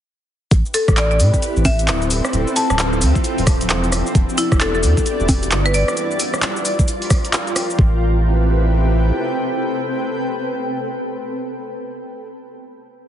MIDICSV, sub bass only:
0, 0, Header, 1, 2, 480
1, 0, Start_track
1, 0, Key_signature, 0, "minor"
1, 0, Tempo, 454545
1, 544, Time_signature, 4, 2, 24, 8
1, 13814, End_track
2, 0, Start_track
2, 0, Title_t, "Sub bass"
2, 0, Program_c, 0, 38
2, 542, Note_on_c, 0, 33, 100
2, 663, Note_off_c, 0, 33, 0
2, 931, Note_on_c, 0, 33, 103
2, 1262, Note_on_c, 0, 45, 95
2, 1277, Note_off_c, 0, 33, 0
2, 1383, Note_off_c, 0, 45, 0
2, 1650, Note_on_c, 0, 33, 91
2, 1982, Note_on_c, 0, 26, 104
2, 1998, Note_off_c, 0, 33, 0
2, 2326, Note_off_c, 0, 26, 0
2, 2462, Note_on_c, 0, 26, 99
2, 2583, Note_off_c, 0, 26, 0
2, 2851, Note_on_c, 0, 26, 105
2, 3182, Note_on_c, 0, 38, 98
2, 3198, Note_off_c, 0, 26, 0
2, 3303, Note_off_c, 0, 38, 0
2, 3570, Note_on_c, 0, 26, 92
2, 3903, Note_on_c, 0, 28, 101
2, 3919, Note_off_c, 0, 26, 0
2, 4247, Note_off_c, 0, 28, 0
2, 4382, Note_on_c, 0, 28, 100
2, 4503, Note_off_c, 0, 28, 0
2, 4771, Note_on_c, 0, 28, 107
2, 5103, Note_on_c, 0, 40, 97
2, 5119, Note_off_c, 0, 28, 0
2, 5224, Note_off_c, 0, 40, 0
2, 5490, Note_on_c, 0, 28, 90
2, 5822, Note_on_c, 0, 31, 104
2, 5838, Note_off_c, 0, 28, 0
2, 6166, Note_off_c, 0, 31, 0
2, 8223, Note_on_c, 0, 33, 97
2, 9621, Note_off_c, 0, 33, 0
2, 13814, End_track
0, 0, End_of_file